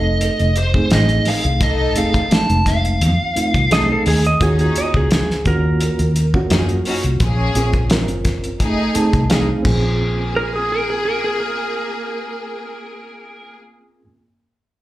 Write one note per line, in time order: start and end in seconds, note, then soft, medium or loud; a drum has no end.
0.00 0.29 F1 medium
0.00 0.51 A3 medium
0.00 0.51 C4 medium
0.00 0.51 D#4 medium
0.00 0.51 A4 medium
0.00 0.57 D#5 medium
0.21 closed hi-hat medium
0.39 0.81 F1 medium
0.39 closed hi-hat soft
0.56 0.90 C5 medium
0.56 closed hi-hat medium
0.74 1.64 A3 medium
0.74 1.64 C4 medium
0.74 1.64 D#4 medium
0.74 1.65 G#4 medium
0.74 kick medium
0.90 1.19 A1 medium
0.90 1.10 A3 medium
0.90 1.10 D#4 medium
0.90 1.10 G#4 medium
0.90 1.28 D#5 medium
0.90 snare loud
0.90 closed hi-hat medium
1.09 closed hi-hat soft
1.25 1.45 A3 medium
1.25 1.45 D#4 medium
1.25 1.45 G#4 medium
1.25 1.63 F5 medium
1.25 snare soft
1.25 open hi-hat medium
1.44 1.96 C2 medium
1.44 closed hi-hat soft
1.61 2.31 A3 medium
1.61 2.31 D#4 medium
1.61 2.31 A4 medium
1.61 1.98 D#5 medium
1.61 kick loud
1.61 closed hi-hat medium
1.96 2.24 F1 medium
1.96 2.22 A3 medium
1.96 2.23 C4 medium
1.96 2.23 D#4 medium
1.96 2.23 G#4 medium
1.96 2.33 F5 medium
1.96 closed hi-hat medium
2.14 kick medium
2.14 closed hi-hat soft
2.31 3.09 G#3 medium
2.31 3.09 A3 medium
2.31 3.09 C4 medium
2.31 3.09 D#4 medium
2.31 2.68 A5 loud
2.31 snare loud
2.31 closed hi-hat medium
2.50 3.03 F1 medium
2.50 closed hi-hat soft
2.66 4.03 F5 medium
2.66 kick medium
2.66 snare soft
2.66 closed hi-hat medium
2.85 closed hi-hat soft
3.01 3.16 F2 loud
3.01 closed hi-hat medium
3.36 3.62 A3 medium
3.36 3.62 C4 medium
3.36 3.62 D#4 medium
3.36 3.63 F4 medium
3.36 muted fingered electric bass stroke soft
3.36 closed hi-hat medium
3.54 3.96 C2 medium
3.54 kick medium
3.54 closed hi-hat soft
3.71 4.23 A3 medium
3.71 3.90 A3 medium
3.71 4.24 C4 medium
3.71 3.90 D#4 medium
3.71 4.24 D#4 medium
3.71 4.24 G#4 loud
3.71 3.90 A4 medium
3.71 3.90 D#5 medium
3.71 snare loud
3.71 closed hi-hat medium
3.92 4.07 A4 medium
4.06 4.34 D#2 medium
4.06 4.24 A3 medium
4.06 4.25 D#4 medium
4.06 4.25 G#4 medium
4.06 open hi-hat medium
4.24 4.42 D#5 medium
4.24 closed hi-hat soft
4.41 4.69 D#2 loud
4.41 5.19 A#3 medium
4.41 5.19 C#4 medium
4.41 5.11 C#4 medium
4.41 5.11 D#4 medium
4.41 5.19 F4 medium
4.41 5.19 F#4 loud
4.41 4.60 G#4 medium
4.41 kick loud
4.41 closed hi-hat medium
4.59 4.76 G#4 medium
4.59 closed hi-hat soft
4.76 4.95 D#5 medium
4.76 closed hi-hat medium
4.94 5.22 C#2 medium
4.94 5.12 G#4 medium
4.94 kick medium
5.11 5.46 G#4 medium
5.11 snare loud
5.11 closed hi-hat medium
5.30 snare soft
5.45 5.89 D#2 loud
5.45 6.11 A#3 medium
5.45 6.11 C#4 medium
5.45 6.11 F4 medium
5.45 6.11 F#4 medium
5.45 6.83 A#4 medium
5.45 kick medium
5.45 closed hi-hat medium
5.81 closed hi-hat medium
5.99 6.41 D#2 loud
5.99 closed hi-hat soft
6.16 closed hi-hat medium
6.34 7.21 A#3 medium
6.34 7.21 C#4 medium
6.34 7.21 F4 medium
6.34 7.21 F#4 loud
6.34 kick medium
6.50 6.79 F#2 medium
6.50 6.69 C#4 medium
6.50 6.70 D#4 medium
6.50 6.69 G#4 medium
6.50 snare loud
6.50 closed hi-hat medium
6.69 closed hi-hat soft
6.85 7.05 C#4 medium
6.85 7.05 D#4 medium
6.85 7.05 F#4 medium
6.85 open hi-hat medium
7.03 7.17 C2 medium
7.03 closed hi-hat soft
7.20 7.48 A#1 loud
7.20 7.91 A#3 medium
7.20 7.92 C#4 medium
7.20 7.91 G#4 loud
7.20 kick loud
7.20 closed hi-hat medium
7.55 8.09 A#1 medium
7.55 7.82 C4 medium
7.55 7.82 C#4 medium
7.55 7.82 F4 medium
7.55 7.82 G#4 medium
7.55 closed hi-hat medium
7.73 kick medium
7.73 closed hi-hat soft
7.90 8.60 C4 medium
7.90 8.61 C#4 medium
7.90 8.61 F4 medium
7.90 8.61 A#4 medium
7.90 snare loud
7.90 closed hi-hat medium
8.08 8.60 F#1 medium
8.08 closed hi-hat soft
8.25 kick medium
8.25 snare soft
8.25 closed hi-hat medium
8.44 closed hi-hat soft
8.60 8.75 F1 loud
8.60 9.17 A3 medium
8.60 9.17 D#4 medium
8.60 9.17 G#4 loud
8.60 kick medium
8.60 closed hi-hat medium
8.95 9.21 A3 medium
8.95 9.22 C4 medium
8.95 9.22 D#4 medium
8.95 9.22 G#4 medium
8.95 9.28 A5 medium
8.95 muted fingered electric bass stroke soft
8.95 closed hi-hat medium
9.13 9.55 C2 medium
9.13 kick medium
9.13 closed hi-hat soft
9.29 9.65 A3 medium
9.29 9.49 A3 medium
9.29 9.61 C4 medium
9.29 9.65 D#4 medium
9.29 9.49 D#4 medium
9.29 9.65 G#4 medium
9.29 9.49 G#4 medium
9.29 9.62 F5 medium
9.29 snare loud
9.29 closed hi-hat medium
9.62 14.05 A#1 medium
9.62 13.56 A#3 medium
9.62 14.02 C4 medium
9.62 14.04 C#4 medium
9.62 14.05 F4 medium
9.62 13.56 G#4 loud
9.62 kick loud
9.62 crash medium
9.67 14.06 G#4 medium
10.36 10.54 A#4 medium
10.56 10.71 G#4 medium
10.72 10.89 A#4 loud
10.90 11.05 G#4 medium
11.05 11.23 A#4 medium
11.24 11.40 G#4 medium
11.40 13.55 A#4 medium